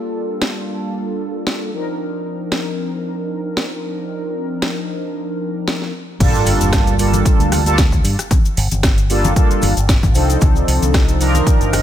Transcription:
Already playing: analog polysynth G3 A#3 D4 F4 A4
0.42 snare
1.47 snare
1.73 analog polysynth F3 C4 D4 D#4 A#4
2.52 snare
3.57 snare
4.62 snare
5.68 snare
5.82 snare
6.19 fingered electric bass G1, analog polysynth G3 A#3 D4 F4 A4, kick, closed hi-hat, crash, sub drop, high conga, shaker, maracas
6.34 maracas, shaker
6.46 fingered electric bass G1, open hi-hat, maracas
6.61 fingered electric bass G1, closed hi-hat, high conga, maracas, shaker
6.73 kick, cross-stick, snare, closed hi-hat, maracas, shaker
6.87 closed hi-hat, maracas, shaker
6.98 analog polysynth G3 A#3 D4 F4 A4, open hi-hat, maracas
7.13 closed hi-hat, high conga, maracas, shaker
7.25 kick, closed hi-hat, maracas, shaker
7.39 fingered electric bass D2, closed hi-hat, maracas, shaker
7.52 cross-stick, open hi-hat, high conga, maracas
7.66 analog polysynth G3 A#3 D4 F4 A4, closed hi-hat, shaker, maracas
7.78 kick, snare, closed hi-hat, maracas, shaker
7.92 kick, high conga, maracas, shaker
8.04 fingered electric bass G2, open hi-hat, maracas
8.19 cross-stick, closed hi-hat, shaker, maracas
8.31 kick, closed hi-hat, high conga, shaker, maracas
8.45 maracas, shaker
8.57 fingered electric bass G1, open hi-hat, maracas
8.71 fingered electric bass G1, closed hi-hat, high conga, shaker, maracas
8.83 kick, cross-stick, snare, closed hi-hat, shaker, maracas
8.98 closed hi-hat, maracas, shaker
9.10 analog polysynth G3 A#3 D4 F4 A4, open hi-hat, maracas
9.24 closed hi-hat, high conga, maracas, shaker
9.36 analog polysynth G3 A#3 D4 F4 A4, kick, closed hi-hat, maracas, shaker
9.51 muted fingered electric bass stroke, closed hi-hat, maracas, shaker
9.62 fingered electric bass G1, open hi-hat, high conga, maracas
9.77 fingered electric bass G1, closed hi-hat, maracas, shaker
9.89 kick, snare, closed hi-hat, maracas, shaker
10.03 kick, high conga, maracas, shaker
10.14 fingered electric bass C2, analog polysynth F3 C4 D4 D#4 A4, open hi-hat, maracas
10.30 closed hi-hat, shaker, maracas
10.41 fingered electric bass C2, kick, closed hi-hat, high conga, maracas, shaker
10.55 maracas, shaker
10.68 fingered electric bass C2, open hi-hat, maracas
10.82 fingered electric bass C2, closed hi-hat, high conga, maracas, shaker
10.94 kick, cross-stick, snare, closed hi-hat, maracas, shaker
11.08 closed hi-hat, maracas, shaker
11.20 analog polysynth F3 C4 D4 D#4 A#4, open hi-hat, maracas
11.34 closed hi-hat, high conga, shaker, maracas
11.47 kick, closed hi-hat, shaker, maracas
11.61 fingered electric bass G1, closed hi-hat, shaker, maracas
11.73 cross-stick, open hi-hat, high conga, maracas

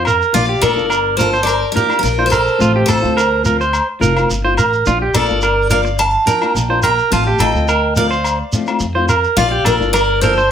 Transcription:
Already playing: upright bass F2
0.05 clean electric guitar A#4, low agogo, shekere
0.22 shekere
0.33 upright bass A#1, nylon-string guitar F3 A#3 D4 F4, clean electric guitar F4, steel-string acoustic guitar D5 F5, shekere
0.49 clean electric guitar G4
0.60 upright bass A#1, nylon-string guitar A#3 D4 F4, clean electric guitar A4, steel-string acoustic guitar A#4 D5, muted nylon-string guitar stroke, low agogo, shekere
0.76 upright bass G1, nylon-string guitar D4 F4, shekere
0.90 clean electric guitar A#4, low agogo, shekere
1.17 nylon-string guitar F3 A#3 D4 F4, steel-string acoustic guitar A4 C5, clean electric guitar A#4, shekere
1.33 clean electric guitar C5, shekere
1.43 steel-string acoustic guitar A#4 D5, low agogo
1.48 shekere
1.72 nylon-string guitar F3 A#3 D4 F4, steel-string acoustic guitar A#4
1.76 steel-string acoustic guitar G4, clean electric guitar A#4, shekere
1.89 nylon-string guitar A#3 D4 F4, low agogo, shekere
1.99 steel-string acoustic guitar F4 A#4
2.03 upright bass A#1, shekere
2.18 nylon-string guitar A#3 D4 F4, clean electric guitar C5
2.26 steel-string acoustic guitar C5
2.30 steel-string acoustic guitar A4, clean electric guitar A#4, low agogo, shekere
2.47 shekere
2.58 upright bass A1, nylon-string guitar F3 A3 C4 F4, clean electric guitar F4, shekere
2.76 clean electric guitar G4
2.86 upright bass A1, nylon-string guitar A3 C4 F4, steel-string acoustic guitar A4 C5, clean electric guitar A4, muted nylon-string guitar stroke, low agogo, shekere
3.01 upright bass D2, nylon-string guitar A3 C4 F4, shekere
3.17 clean electric guitar A#4, low agogo, shekere
3.43 nylon-string guitar F3 A3 C4 F4, clean electric guitar A#4, shekere
3.61 clean electric guitar C5, shekere
3.73 low agogo, shekere
3.99 upright bass F1, nylon-string guitar F3 A3 C4 F4, clean electric guitar A#4, shekere
4.15 nylon-string guitar C4 F4, low agogo, shekere
4.30 upright bass G1, shekere
4.44 nylon-string guitar A3 C4 F4, clean electric guitar C5
4.57 upright bass A1, clean electric guitar A#4, low agogo, shekere
4.73 shekere
4.86 upright bass A#1, nylon-string guitar F3 D4, clean electric guitar F4, muted nylon-string guitar stroke, shekere
5.02 clean electric guitar G4
5.14 upright bass A#1, nylon-string guitar F3 A#3 D4 F4, clean electric guitar A4, steel-string acoustic guitar A#4 D5, low agogo, shekere
5.28 upright bass G1, nylon-string guitar A#3 D4 F4, shekere
5.42 clean electric guitar A#4, low agogo, shekere
5.70 nylon-string guitar F3 A#3 D4 F4, clean electric guitar A#4, steel-string acoustic guitar D5 F5, shekere
5.85 muted clean electric guitar stroke, shekere
5.99 steel-string acoustic guitar F5 A5, low agogo, shekere
6.26 nylon-string guitar F3 D4 F4, clean electric guitar A#4, steel-string acoustic guitar G5 A#5, shekere
6.41 nylon-string guitar A#3 D4 F4, low agogo, shekere
6.55 upright bass A#1, shekere
6.69 nylon-string guitar A#3 D4 F4, clean electric guitar C5
6.83 clean electric guitar A#4, steel-string acoustic guitar G5 A#5, low agogo, shekere
6.99 shekere
7.10 upright bass A1, nylon-string guitar F3 A3 C4 F4, clean electric guitar F4, steel-string acoustic guitar F5 A5, shekere
7.27 clean electric guitar G4
7.38 upright bass A1, nylon-string guitar F3 A3 C4 F4, clean electric guitar A4, steel-string acoustic guitar D#5 G5, low agogo, shekere
7.54 upright bass D2, nylon-string guitar A3 C4 F4, shekere
7.68 clean electric guitar A#4, low agogo, shekere
7.96 nylon-string guitar F3 A3 C4 F4, clean electric guitar A#4, steel-string acoustic guitar D5 F5, shekere
8.11 clean electric guitar C5, shekere
8.24 low agogo, shekere
8.53 nylon-string guitar F3 A3 C4 F4, shekere
8.67 nylon-string guitar A3 C4 F4, low agogo, shekere
8.80 upright bass F2, shekere
8.95 nylon-string guitar A3 C4 F4, clean electric guitar C5
9.09 clean electric guitar A#4, low agogo, shekere
9.24 shekere
9.36 upright bass A#1, nylon-string guitar F3 A#3 D4 F4, clean electric guitar F4, steel-string acoustic guitar D5 F5, shekere
9.51 clean electric guitar G4
9.64 upright bass A#1, nylon-string guitar F3 A#3 D4 F4, clean electric guitar A4, steel-string acoustic guitar A#4 D5, low agogo, shekere
9.79 upright bass G1, nylon-string guitar A#3 D4 F4, shekere
9.93 steel-string acoustic guitar A#4 D5, clean electric guitar A#4, low agogo, shekere
10.21 nylon-string guitar F3 A#3 D4 F4, steel-string acoustic guitar A4 C5, clean electric guitar A#4, shekere
10.38 clean electric guitar C5, shekere

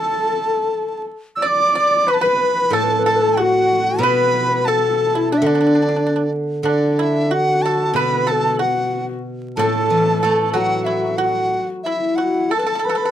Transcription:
Already playing: xiao A4, pipa A4, horsehead fiddle A4, dizi A5
1.36 dizi E6
1.41 horsehead fiddle D5, xiao D5, pipa D5
1.47 dizi D6
1.75 pipa D5, xiao D5, dizi D6
2.07 horsehead fiddle B4, xiao B4, pipa B4
2.11 dizi A5 B5
2.21 horsehead fiddle B4, pipa B4, xiao B4, dizi B5
2.70 guzheng A2, horsehead fiddle A4, pipa A4, xiao A4
2.75 dizi A5
2.83 xiao B4
2.92 xiao A4
2.99 xiao B4
3.06 pipa A4, xiao A4, dizi A5
3.16 xiao B4
3.22 xiao A4
3.37 pipa F#4, horsehead fiddle F#4, dizi F#5
3.42 xiao F#4
3.98 guzheng B2, horsehead fiddle B4, xiao D5, dizi B5
4.03 pipa B4, xiao B4
4.52 xiao B4
4.65 horsehead fiddle A4, pipa A4, xiao A4, dizi A5
5.15 pipa E4, xiao E4
5.32 pipa D4, xiao D4, horsehead fiddle D4, dizi D5
5.37 dizi E5
5.42 guzheng D3
5.46 pipa D4, xiao D4, horsehead fiddle D4, dizi D5
5.55 pipa D4
5.61 pipa D4
5.67 pipa D4
5.75 pipa D4
5.82 pipa D4
5.89 pipa D4
5.96 pipa D4
6.07 pipa D4
6.16 pipa D4
6.63 guzheng D3, pipa D4, horsehead fiddle D4
6.68 dizi D5
6.99 pipa E4, dizi E5
7.31 pipa F#4, horsehead fiddle F#4, dizi F#5
7.62 pipa A4, dizi A5
7.94 guzheng B2, pipa B4, horsehead fiddle B4, dizi B5
8.27 pipa A4, horsehead fiddle A4, dizi A5
8.59 pipa F#4, horsehead fiddle F#4, dizi F#5
9.56 guzheng A2, horsehead fiddle A4, pipa A4, dizi A5
9.90 guzheng E3
10.23 guzheng A3, pipa A4
10.53 guzheng F#3, pipa F#4, horsehead fiddle F#4, dizi F#5
10.85 pipa E4, dizi E5
11.17 pipa F#4, dizi F#5
11.22 horsehead fiddle F#4
11.84 pipa E4, xiao E4, dizi E5
11.88 horsehead fiddle E4
12.16 pipa F#4, dizi F#5
12.21 xiao F#4
12.50 xiao A4, pipa A4, horsehead fiddle A4, dizi A5
12.59 pipa A4, xiao B4
12.67 pipa A4, xiao A4
12.75 pipa A4
12.79 pipa A4
12.85 xiao B4, dizi B5
12.89 pipa A4, dizi A5
12.95 pipa A4, dizi B5
13.01 xiao B4
13.05 pipa A4

